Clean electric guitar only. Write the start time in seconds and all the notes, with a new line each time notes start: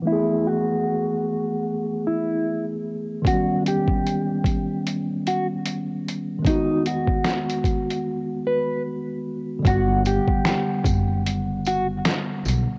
0.07 E4
0.47 F#4
2.07 E4
3.27 F#4
3.68 G4
5.28 F#4
6.47 D#4
6.87 F#4
8.47 B4
9.67 F#4
10.07 G4
11.67 F#4